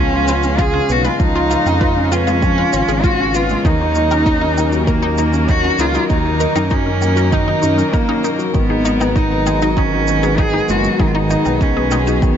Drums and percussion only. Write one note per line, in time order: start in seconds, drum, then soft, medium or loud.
0.28 shaker medium
0.43 shaker soft
0.58 kick loud
0.58 shaker soft
0.89 shaker medium
1.04 shaker soft
1.20 kick loud
1.20 shaker soft
1.51 shaker medium
1.66 low woodblock medium
1.66 shaker soft
1.81 kick loud
1.81 shaker soft
2.12 low woodblock medium
2.12 shaker medium
2.27 shaker soft
2.42 kick loud
2.42 low woodblock medium
2.42 shaker soft
2.73 shaker medium
2.88 shaker soft
3.04 kick loud
3.04 shaker soft
3.34 shaker medium
3.50 shaker soft
3.65 kick loud
3.65 shaker soft
3.95 shaker medium
4.11 low woodblock medium
4.11 shaker soft
4.26 kick loud
4.26 shaker soft
4.57 low woodblock medium
4.57 shaker medium
4.72 shaker soft
4.87 kick loud
4.87 shaker soft
5.18 shaker medium
5.33 shaker soft
5.48 kick loud
5.48 shaker soft
5.79 shaker medium
5.94 shaker soft
6.10 kick loud
6.10 shaker soft
6.40 shaker medium
6.56 low woodblock medium
6.56 shaker soft
6.71 kick loud
6.71 shaker soft
7.02 low woodblock medium
7.02 shaker medium
7.17 shaker soft
7.32 kick medium
7.32 low woodblock medium
7.32 shaker soft
7.63 shaker medium
7.78 shaker soft
7.93 kick loud
7.93 shaker soft
8.24 shaker medium
8.39 shaker soft
8.54 kick loud
8.54 shaker soft
8.85 shaker medium
9.01 low woodblock medium
9.01 shaker soft
9.16 kick medium
9.16 shaker soft
9.47 low woodblock medium
9.47 shaker medium
9.62 shaker soft
9.77 kick medium
9.77 shaker soft
10.08 shaker medium
10.23 shaker soft
10.38 kick loud
10.38 shaker soft
10.69 shaker medium
10.84 shaker soft
10.99 kick loud
10.99 shaker soft
11.30 shaker medium
11.45 low woodblock medium
11.45 shaker soft
11.61 kick loud
11.61 shaker soft
11.91 low woodblock medium
11.91 shaker medium
12.07 shaker soft
12.22 kick loud
12.22 low woodblock medium
12.22 shaker soft